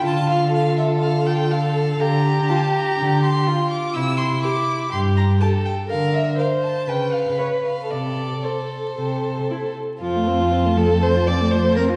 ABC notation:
X:1
M:4/4
L:1/16
Q:1/4=122
K:Dm
V:1 name="Violin"
a2 f2 f2 e2 f2 g2 f4 | [K:F] b4 a2 b4 c'4 d'2 | e'2 c'2 d'4 c'2 b2 a2 g2 | f2 e2 f2 a2 g2 f2 _d2 f2 |
d4 c8- c2 z2 | a16 |]
V:2 name="Violin"
F4 A8 A4 | [K:F] G12 F4 | E8 G4 A4 | B4 c4 _c8 |
A12- A2 z2 | F6 A2 c2 d2 c2 B2 |]
V:3 name="Viola"
F12 A4 | [K:F] z4 F3 z4 z F3 z | z4 G3 z4 z G3 z | z4 B3 z4 z _c3 z |
z4 A3 z4 z E3 z | F, A, C F C A, F, A, C F C A, F, A, C F |]
V:4 name="Cello" clef=bass
D,16 | [K:F] D,4 z4 D,4 z4 | C,4 z4 G,,4 z4 | D,4 z4 _D,4 z4 |
C,4 z4 C,4 z4 | F,,16 |]